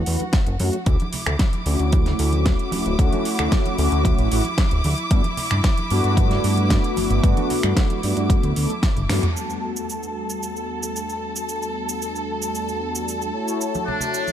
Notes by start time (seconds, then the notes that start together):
Already playing: F#4 F#5
0.06 E2 A3 C#4 E4 B4, open hi-hat, cabasa
0.20 closed hi-hat, high conga, cabasa
0.33 kick, snare, closed hi-hat, cabasa
0.47 F#1, closed hi-hat, cabasa
0.59 F#2 A3 C#4 E4 F#4, open hi-hat, high conga, cabasa
0.73 closed hi-hat, cabasa
0.86 D2 A3 C#4 E4 F#4 D6, kick, closed hi-hat, cabasa
1.00 closed hi-hat, high conga, cabasa
1.13 open hi-hat, low conga, cabasa
1.26 D2, finger snap, closed hi-hat, low conga, cabasa
1.39 kick, snare, closed hi-hat, cabasa
1.53 closed hi-hat, high conga, cabasa
1.66 D2 A3 C#4 E4 F#4, open hi-hat, cabasa
1.79 D2, closed hi-hat, cabasa
1.92 kick, closed hi-hat, high conga, cabasa
2.06 snare, closed hi-hat, low conga, cabasa
2.19 D2, open hi-hat, cabasa
2.33 closed hi-hat, high conga, cabasa
2.46 kick, snare, closed hi-hat, cabasa
2.59 closed hi-hat, cabasa
2.72 D1, open hi-hat, high conga, cabasa
2.85 D1, closed hi-hat, cabasa
2.98 D2 A3 C#4 E4 F#4, kick, closed hi-hat, cabasa
3.12 closed hi-hat, high conga, cabasa
3.25 open hi-hat, cabasa
3.39 D2, finger snap, closed hi-hat, low conga, cabasa
3.52 kick, snare, closed hi-hat, cabasa
3.65 closed hi-hat, high conga, cabasa
3.78 D2 A3 C#4 E4 F#4, open hi-hat, cabasa
3.92 D2, closed hi-hat, cabasa
4.05 kick, closed hi-hat, high conga, cabasa
4.19 A1, closed hi-hat, cabasa
4.31 A1 A3 C#4 E4 F#4, open hi-hat, cabasa
4.44 closed hi-hat, high conga, cabasa
4.58 kick, snare, closed hi-hat, cabasa
4.71 D1, closed hi-hat, cabasa
4.84 D2, open hi-hat, high conga, cabasa
4.98 closed hi-hat, cabasa
5.11 G2 A3 B3 D4 F#4, kick, closed hi-hat, cabasa
5.24 closed hi-hat, high conga, cabasa
5.37 open hi-hat, low conga, cabasa
5.51 G2, finger snap, closed hi-hat, low conga, cabasa
5.64 kick, snare, closed hi-hat, cabasa
5.77 closed hi-hat, high conga, cabasa
5.90 G2 A3 B3 D4 F#4, open hi-hat, cabasa
6.04 G2, closed hi-hat, cabasa
6.17 kick, closed hi-hat, high conga, cabasa
6.31 snare, closed hi-hat, low conga, cabasa
6.44 G2, open hi-hat, cabasa
6.57 closed hi-hat, high conga, cabasa
6.70 kick, snare, closed hi-hat, cabasa
6.83 closed hi-hat, cabasa
6.96 G1, open hi-hat, high conga, cabasa
7.10 G1, closed hi-hat, cabasa
7.22 G2 A3 B3 D4 F#4, kick, closed hi-hat, cabasa
7.37 closed hi-hat, high conga, cabasa
7.50 open hi-hat, low conga, cabasa
7.63 G2, finger snap, closed hi-hat, low conga, cabasa
7.77 kick, snare, closed hi-hat, cabasa
7.90 closed hi-hat, high conga, cabasa
8.03 G2 A3 B3 D4 F#4, open hi-hat, cabasa
8.17 G2, closed hi-hat, cabasa
8.29 kick, closed hi-hat, high conga, cabasa
8.43 D2, closed hi-hat, cabasa
8.56 D2 A3 B3 D4 A4, open hi-hat, cabasa
8.69 closed hi-hat, high conga, cabasa
8.83 kick, snare, closed hi-hat, cabasa
8.97 G1, closed hi-hat, high tom, cabasa
9.09 G2 A3 B3 D4 F#4, finger snap, snare, open hi-hat, high conga, cabasa
9.23 closed hi-hat, mid tom, cabasa
9.35 E2 G3 A3 B3 D4 F#4 A4 A5, cabasa
9.50 cabasa
9.76 cabasa
9.90 cabasa
10.03 cabasa
10.30 cabasa
10.43 cabasa
10.56 cabasa
10.83 cabasa
10.96 cabasa
11.09 cabasa
11.36 cabasa
11.49 cabasa
11.62 cabasa
11.89 cabasa
12.02 cabasa
12.16 cabasa
12.42 cabasa
12.55 cabasa
12.69 cabasa
12.95 cabasa
13.08 cabasa
13.22 cabasa
13.33 A3 E4 F#4 C#5
13.48 cabasa
13.61 cabasa
13.75 high conga, cabasa
13.87 D4, low conga
14.01 low conga, cabasa
14.13 cabasa
14.27 high conga, cabasa